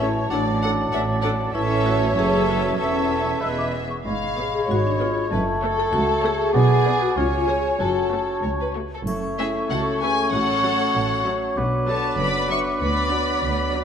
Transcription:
Already playing: A1 A2 E3 C#5 A5
0.00 C#4 E4 A4
0.30 A1 A2 F#3 D4 A4 D5 F#5
0.34 D4
0.62 D4 A4 F#5
0.91 A1 A2 D4 A4 E5 F#5
1.22 D4 A4 D5 F#5
1.52 A1 A2 E3 C#4 E4 A4 C#5 E5 A5
1.56 E4
1.86 F#4
2.14 F#1 F#2 E3 C#4 G#4 A4 C#5 E5 A5
2.19 G#4
2.48 F#4
2.77 E1 E2 E3 C#4 A4 C#5 E5 A5
3.41 E1 E2 G#3 B3 G#4 B4 E5 E6
3.58 D6
3.90 C#6
4.05 G#1 G#2 G#3 C#5 F5 B5
4.36 B3 G#4 C#5
4.54 G#4
4.68 G#1 G#2 F#4 C#5
4.85 D4
4.99 B3 F4 G#4 C#5
5.30 F#1 F#2 A3 B4 A5
5.61 A3 A4 C#5
5.78 A4
5.92 C#2 F#4
6.22 A3 G#4 A4 C#5
6.53 B1 B2 B3 G#4 D5 G#5
6.85 B3 G#4 D5
7.02 F#4
7.16 C#2 C#3 C#4 F4 C#5 G#5
7.48 G#3 G#4 C#5
7.78 F#1 F#2 C#4 F#4 A4 C#5 A5
8.12 A3 F#4 C#5
8.43 C#2 C#5
8.60 B4
8.75 A3 F#4 C#5
8.94 A4
9.06 F#1 F#2 A3 C#4 C#5 C#6, triangle
9.38 A3 C#4 E4 G#4 E5
9.69 C#2 F#4 A4 F#5
10.02 A3 C#4 G#4 B4 G#5
10.32 A1 A2 F#3 F#4 A4 F#5
10.64 F#3 C#4
10.94 A1 A2
11.24 F#3 C#4
11.56 B1 B2 B3 D4 B4 D6
11.88 F#3 D4 A4 C#5 A5
12.18 F#1 F#2 B4 D5 B5
12.49 F#3 D4 C#5 E5 C#6
12.81 D2 F#3 B4 D5 B5
13.13 F#3 D4
13.43 D2
13.74 F#3 D4

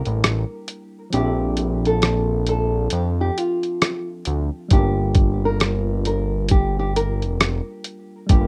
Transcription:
Already playing: G3 A#3 D4 E4 A#4
0.05 A1, closed hi-hat
0.24 cross-stick, closed hi-hat
0.68 closed hi-hat
1.10 A#1 F3 C4 G4, closed hi-hat
1.14 D4 E5
1.19 G4
1.25 A4
1.57 closed hi-hat
1.85 A4, closed hi-hat
2.02 cross-stick, closed hi-hat
2.47 A4, closed hi-hat
2.90 F2 G4, closed hi-hat
3.21 G4
3.38 F4, closed hi-hat
3.63 closed hi-hat
3.82 cross-stick, closed hi-hat
4.25 D2, closed hi-hat
4.69 G1 G3 A#3, kick, closed hi-hat
4.73 D4 F4 G4
4.77 A#4
5.15 kick, closed hi-hat
5.45 A#4
5.60 cross-stick, closed hi-hat
6.05 A#4, closed hi-hat
6.49 G4, kick, closed hi-hat
6.79 G4
6.96 A#4, closed hi-hat
7.22 F1, closed hi-hat
7.40 cross-stick, closed hi-hat
7.84 closed hi-hat
8.27 G1 G3 A#3 G4, kick, closed hi-hat
8.31 D4 F4
8.35 G4
8.42 A#4

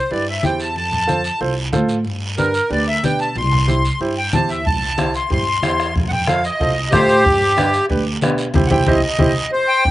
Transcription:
Already playing: C5
0.11 G2 E4 G4 B4 D5, high conga, long guiro
0.29 E5
0.43 E2 E4 G4 C5 G5, high conga, short guiro
0.60 A5, short guiro
0.76 F2 A5, high conga, long guiro
0.92 low conga
1.07 F4 A4 C5, high conga, short guiro
1.24 short guiro
1.41 C2 F4 A4 C5, high conga, long guiro
1.73 A2 F4 A4 C5, high conga, low conga, short guiro
1.89 short guiro
2.05 G2, high conga, long guiro
2.37 D4 G4 A#4 B4, high conga, short guiro
2.54 short guiro
2.70 D2 D4 G4 B4 D5, high conga, long guiro
2.88 E5
3.03 B2 D4 G4 B4 G5, high conga, short guiro
3.19 A5, short guiro
3.36 C2 C6, high conga, long guiro
3.52 low conga
3.68 E4 G4 C5, high conga, short guiro
3.85 short guiro
4.00 G2 E4 G4 C5, high conga, long guiro
4.18 G5
4.33 E2 E4 G4 C5 A5, high conga, low conga, short guiro
4.49 E5, short guiro
4.65 C2 A5, bombo low, high conga, long guiro
4.97 E4 G4 C5, bombo rim, high conga, short guiro
5.14 C6, short guiro
5.30 G2 E4 G4 C5 C6, bombo low, high conga, long guiro
5.62 E2 E4 G4 C5, bombo rim, high conga, short guiro
5.79 bombo rim, short guiro
5.96 F2, bombo low, high conga, long guiro
6.08 F#5 G5, low conga
6.27 F4 A4 C5 F5, bombo rim, high conga, short guiro
6.44 D#5, short guiro
6.60 C2 F4 A4 C5, bombo low, high conga, long guiro
6.91 A2 F4 G4 A4 C5, bombo low, bombo rim, high conga, low conga, short guiro
7.08 short guiro
7.25 G2, bombo low, high conga, long guiro
7.57 D4 G4 B4, bombo rim, high conga, short guiro
7.73 short guiro
7.90 D2 D4 G4 B4, bombo low, high conga, long guiro
8.21 B2 D4 G4 B4, bombo rim, high conga, short guiro
8.38 short guiro
8.54 C2 E4 G4 C5, bombo low, high conga, long guiro
8.67 F#5, high conga, long guiro
8.71 C2 E4 G4 C5 G5, bombo low
8.86 C2 E4 G4 C5 D#5, bombo low, high conga, long guiro
9.03 D#5
9.19 C2 E4 G4 C5, bombo low, high conga, long guiro
9.52 C5
9.68 G5
9.84 C2, bombo low, high conga, long guiro

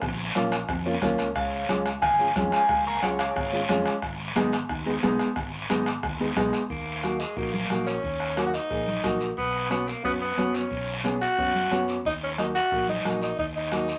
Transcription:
0.02 A#1, bombo low, bombo rim, low conga, long guiro
0.35 A#1 A#3 C#4 F4, bombo rim, high conga, short guiro
0.52 bombo rim, short guiro
0.69 F2, bombo low, bombo rim, low conga, long guiro
0.85 A#3 C#4 F4
1.02 D#2 A#3 C#4 F4, bombo low, bombo rim, high conga, low conga, short guiro
1.18 C#2, bombo rim, short guiro
1.35 C#2 C#3 C#5 F5, bombo low, bombo rim, long guiro
1.69 C#2 G#3 C#4 F4, bombo rim, high conga, short guiro
1.86 bombo rim, short guiro
2.02 G#1 F3 F5 G#5, bombo low, bombo rim, low conga, long guiro
2.19 G#3 C#4 F4
2.35 F2 G#3 C#4 F4, bombo low, bombo rim, high conga, short guiro
2.52 F3 F5 G#5, bombo rim, short guiro
2.69 C#2, bombo low, bombo rim, low conga, long guiro
2.86 A#3 A#5 C#6
3.02 C#2 C#3 G#3 C#4 F4 C#5 F#5, bombo rim, high conga, short guiro
3.19 C#3 C#5 F5, bombo rim, short guiro
3.36 G#1, bombo low, bombo rim, low conga, long guiro
3.52 G#3 C#4 F4
3.69 F2 G#3 C#4 F4, bombo rim, high conga, low conga, short guiro
3.86 bombo rim, short guiro
4.02 G#1, bombo low, bombo rim, long guiro
4.36 G#1 G#3 B3 D#4, bombo rim, high conga, short guiro
4.53 bombo rim, short guiro
4.69 D#2, bombo low, bombo rim, low conga, long guiro
4.86 G#3 B3 D#4
5.03 B1 G#3 B3 D#4, bombo rim, high conga, short guiro
5.19 bombo rim, short guiro
5.36 G#1, bombo low, bombo rim, low conga, long guiro
5.69 G#1 G#3 B3 D#4, bombo rim, high conga, short guiro
5.86 bombo rim, short guiro
6.03 D#2, bombo low, bombo rim, low conga, long guiro
6.20 G#3 B3 D#4
6.36 B1 G#3 B3 D#4, bombo low, bombo rim, high conga, short guiro
6.53 bombo rim, short guiro
6.70 D#2 A#3, bombo low, long guiro
7.03 A#3 D#4 F#4, bombo rim, high conga, short guiro
7.20 G#3, short guiro
7.36 A#1 A#3 D#4 F#4, bombo low, long guiro
7.53 A#3, high conga
7.70 A#1 A#3 D#4 F#4, bombo rim, high conga, short guiro
7.87 C#4, short guiro
8.03 D#2, bombo low, long guiro
8.20 bombo rim
8.36 A#3 D#4 F#4, bombo rim, high conga, short guiro
8.47 F#4
8.54 D#4, short guiro
8.70 A#1 A#3 D#4 G#4, bombo low, long guiro
8.88 high conga
9.03 A#1 A#3 D#4 F#4, bombo low, bombo rim, high conga, short guiro
9.21 short guiro
9.37 B1 B3, bombo low, long guiro
9.70 B3 C#4 F#4, bombo rim, high conga, short guiro
9.88 A#3, short guiro
10.04 F#2 B3 C#4 F#4, bombo low, long guiro
10.21 B3
10.37 F#2 B3 C#4 F#4, bombo rim, high conga, short guiro
10.54 C#4, short guiro
10.71 B1, bombo low, long guiro
11.04 B3 C#4 G#4, bombo rim, high conga, short guiro
11.21 F#4, short guiro
11.38 F#2 B3 C#4 F#4, bombo low, long guiro
11.55 high conga
11.71 F#2 B3 C#4 F#4, bombo rim, high conga, short guiro
11.88 short guiro
12.05 D#2 D#4, bombo low, long guiro
12.23 C#4
12.38 A#3 D#4 F#4, bombo rim, high conga, short guiro
12.55 F#4, short guiro
12.71 A#1 A#3 D#4 F#4, bombo low, long guiro
12.88 D#4, high conga
13.04 A#1 A#3 D#4 F#4, bombo rim, high conga, short guiro
13.22 D#4, short guiro
13.39 D#2 D#4, bombo low, long guiro
13.56 D#4
13.71 A#3 D#4 F#4, bombo rim, high conga, short guiro
13.88 short guiro

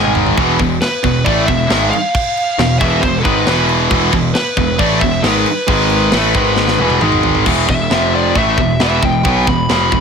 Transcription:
Already playing: G#1 G#2 D#3 G#3 G#5
0.05 high tom
0.15 mid tom
0.26 floor tom
0.37 E1 E2 B2 E3, kick, crash
0.59 E1 E2 B2, kick, crash
0.81 B4, snare, crash
1.04 E1 E2 B2, kick, crash
1.24 A1 A2 E3 A3 D5, kick, crash
1.47 E1 E2 B2 E5, kick, crash
1.70 G#1 G#2 D#3 G#3, snare, crash
1.90 F5, crash
2.15 kick, crash
2.37 crash
2.59 E1 E2 B2, snare, crash
2.79 E1 E2 B2 E3 E5, kick, crash
3.01 E1 E2 B2 C5, kick, crash
3.19 A4
3.24 G#1 G#2 D#3 G#3 B4, kick, crash
3.46 E1 E2 B2 E3, snare, crash
3.69 crash
3.91 E1 E2 B2 E3, kick, crash
4.12 E1 E2 B2, kick, crash
4.34 B4, snare, crash
4.57 E1 E2 B2, kick, crash
4.79 A1 A2 E3 A3 D5, kick, crash
5.00 E1 E2 B2 E5, kick, crash
5.23 G#1 G#2 D#3 G#3 B4, snare, crash
5.46 crash
5.68 G#1 G#2 D#3 G#3, kick, crash
5.90 crash
6.12 A1 A2 E3 A3, snare, crash
6.35 G#1 G#2 D#3 G#3, kick, crash
6.56 snare
6.68 snare
6.79 E1 E2 B2 E3, high tom
6.90 high tom
7.01 G#1 G#2 D#3 G#3, mid tom
7.12 mid tom
7.23 floor tom
7.35 floor tom
7.46 E1 E2 B2 E3, kick, crash, china
7.69 E1 E2 B2 E5, kick
7.91 F1 F2 C3 F3, snare, china
8.15 D5
8.36 A1 A2 E3 A3 E5, kick, china
8.58 E1 E2 B2, kick
8.80 E1 E2 B2 E3 E5, snare, china
9.03 E1 E2 B2 G5, kick
9.25 B1 B2 F#3 B3, kick, china
9.47 E1 E2 B2 B5, kick
9.69 F1 F2 C3 F3 B5, snare, china
9.92 E1 E2 B2, kick

